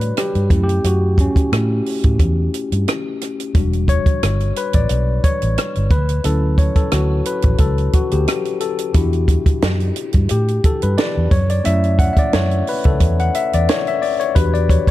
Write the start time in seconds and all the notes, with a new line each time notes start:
Already playing: A2 G3 D4 F#4 B4 C#5 D5
0.01 closed hi-hat
0.17 G4, cross-stick, closed hi-hat
0.35 G2, closed hi-hat
0.50 F#2 A3 C#4 E4, kick, closed hi-hat
0.64 G4
0.69 closed hi-hat
0.84 F#2 F#4, closed hi-hat
1.18 C#4, kick, closed hi-hat
1.36 kick, closed hi-hat
1.52 A2 A3 C#4 E4, cross-stick, closed hi-hat
1.86 open hi-hat
2.04 A2, kick, closed hi-hat
2.19 E2, kick, closed hi-hat
2.54 closed hi-hat
2.72 G2, closed hi-hat
2.88 cross-stick, closed hi-hat
3.21 cross-stick, closed hi-hat
3.40 closed hi-hat
3.55 E1 G3 D4 F#4, kick, closed hi-hat
3.73 closed hi-hat
3.88 C#5, kick, closed hi-hat
4.06 kick, closed hi-hat
4.23 G1, cross-stick, closed hi-hat
4.40 closed hi-hat
4.56 B4, closed hi-hat
4.73 A1 D5, kick, closed hi-hat
4.89 B1, closed hi-hat
5.24 C#5, kick, closed hi-hat
5.42 A1, closed hi-hat
5.58 cross-stick, closed hi-hat
5.75 G1, closed hi-hat
5.91 D2 B4, kick, closed hi-hat
6.09 closed hi-hat
6.24 D2 F#3 C#4 E4 A4, closed hi-hat
6.58 C#5, kick, closed hi-hat
6.76 A4, kick, closed hi-hat
6.92 D2 F#4, cross-stick, closed hi-hat
7.25 B4, closed hi-hat
7.42 A1, kick, closed hi-hat
7.58 C#2 A4, kick, closed hi-hat
7.78 closed hi-hat
7.93 F#4, kick, closed hi-hat
8.11 D2 G4, closed hi-hat
8.28 cross-stick, closed hi-hat
8.45 closed hi-hat
8.60 A4, closed hi-hat
8.79 closed hi-hat
8.94 E2 D4 E4 F#4 G4, kick, closed hi-hat
9.13 closed hi-hat
9.28 kick, closed hi-hat
9.46 kick, closed hi-hat
9.62 F#2, snare, closed hi-hat
9.80 closed hi-hat
9.96 closed hi-hat
10.13 G2, kick, closed hi-hat
10.29 A2 G4, closed hi-hat
10.48 closed hi-hat
10.64 A4, kick, closed hi-hat
10.82 G2 B4, closed hi-hat
10.98 D5, snare, closed hi-hat
11.17 E2
11.31 F#2 C#5, kick, closed hi-hat
11.50 D5, closed hi-hat
11.64 F#2 A3 C#4 E4 E5, closed hi-hat
11.84 closed hi-hat
11.99 F#5, kick, closed hi-hat
12.13 E5, kick, closed hi-hat
12.19 D5
12.33 F#2 C#5, snare, closed hi-hat
12.51 closed hi-hat
12.67 B4, open hi-hat
12.84 C#2 A4, kick, closed hi-hat
13.00 E2, kick, closed hi-hat
13.19 F#5, closed hi-hat
13.35 E5, closed hi-hat
13.53 E2 D5, closed hi-hat
13.69 C#5, snare, closed hi-hat
13.87 E5, closed hi-hat
14.02 D5, open hi-hat
14.20 C#5, closed hi-hat
14.35 E2 D4 F#4 G4 B4, kick, closed hi-hat
14.54 D5, closed hi-hat
14.69 C#5, kick, closed hi-hat
14.87 kick